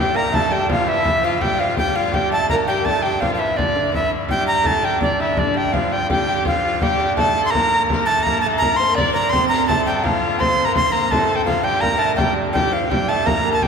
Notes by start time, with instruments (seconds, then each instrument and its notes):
Already playing: pipe organ G2 D3, lute G3
0.00 fiddle G4, recorder G5
0.14 lute A#3, fiddle A#4, recorder A#5, frame drum
0.32 lute A3, fiddle A4, recorder A5, frame drum
0.50 lute G3, fiddle G4, recorder G5
0.68 lute F3, fiddle F4, recorder F5, frame drum
0.87 lute E3, fiddle E4, recorder E5
1.05 lute E3, frame drum
1.23 lute F3, fiddle F4, recorder F5
1.39 lute G3, fiddle G4, recorder G5, frame drum
1.58 lute F3, fiddle F4, recorder F5
1.76 pipe organ G2 D3, lute G3, fiddle G4, recorder G5, frame drum
1.95 fiddle F4, recorder F5
2.12 lute G3, fiddle G4, recorder G5, frame drum
2.30 lute A3, fiddle A4, recorder A5, frame drum
2.48 fiddle A#4, recorder A#5, frame drum
2.53 lute A#3
2.67 lute G3, fiddle G4, recorder G5
2.85 lute A3, fiddle A4, recorder A5, frame drum
3.02 lute G3, fiddle G4, recorder G5, frame drum
3.20 lute F3, fiddle F4, recorder F5, frame drum
3.35 recorder F5
3.39 lute E3, fiddle E4, recorder E5, frame drum
3.56 lute D3, fiddle D4, recorder D5, frame drum
3.76 lute D3
3.92 lute E3, fiddle E4, recorder E5, frame drum
4.12 frame drum
4.28 lute G3, fiddle G4, recorder G5, frame drum
4.47 recorder A#5, frame drum
4.63 lute A3, fiddle A4, recorder A5, frame drum
4.82 lute G3, fiddle G4, recorder G5
5.00 lute D3, fiddle D4, recorder D5, frame drum
5.19 fiddle E4, recorder E5, frame drum
5.36 lute D3, fiddle D4, recorder D5, frame drum
5.54 lute G3, recorder G5, frame drum
5.72 lute F3, fiddle F4, recorder F5, frame drum
5.92 lute G3, recorder G5, frame drum
6.08 pipe organ G2 D3, lute G3, fiddle G4, recorder G5, frame drum
6.25 fiddle G4, frame drum
6.45 lute F3, fiddle F4, recorder F5, frame drum
6.63 fiddle F4, frame drum
6.81 lute G3, fiddle G4, recorder G5, frame drum
7.00 lute G3
7.17 lute A3, fiddle A4, recorder A5, frame drum
7.35 fiddle A4, frame drum
7.45 recorder C6
7.51 lute A#3, fiddle A#4, recorder A#5
7.55 frame drum
7.73 frame drum
7.90 fiddle A#4, frame drum
8.06 lute A3, fiddle A4, recorder A5
8.23 lute A#3, fiddle A#4, recorder A#5, frame drum
8.41 fiddle A4, recorder A5, frame drum
8.46 lute A3
8.58 recorder A#5, frame drum
8.62 lute A#3, fiddle A#4
8.76 fiddle C5, recorder C6, frame drum
8.95 lute D4, recorder D5, fiddle D5, frame drum
9.13 fiddle A#4, recorder A#5
9.30 lute C4, fiddle C5, recorder C6, frame drum
9.48 fiddle A#4, recorder A#5
9.67 lute A3, fiddle A4, recorder A5, frame drum
9.86 lute G3, recorder G5
10.03 lute F3, fiddle F4, recorder F5, frame drum
10.23 frame drum
10.39 pipe organ G2 D3, lute C4, fiddle C5, recorder C6, frame drum
10.59 frame drum
10.65 lute A#3, fiddle A#4, recorder A#5
10.75 lute C4, fiddle C5, recorder C6, frame drum
10.92 lute A#3, recorder A#5, frame drum
11.11 lute A3, fiddle A4, recorder A5, frame drum
11.36 recorder G5
11.45 lute F3, fiddle F4, recorder F5, frame drum
11.63 lute G3, fiddle G4, recorder G5, frame drum
11.81 lute A#3, fiddle A#4, recorder A#5, frame drum
11.98 lute A3, recorder A5, frame drum
12.15 lute G3, fiddle G4, recorder G5, frame drum
12.53 lute G3, fiddle G4, recorder G5, frame drum
12.71 lute F3, recorder F5, frame drum
12.90 lute G3, fiddle G4, recorder G5, frame drum
13.09 lute A3, fiddle A4, recorder A5, frame drum
13.26 lute A#3, fiddle A#4, recorder A#5, frame drum
13.53 fiddle A4, recorder A5
13.62 lute G3, recorder G5, frame drum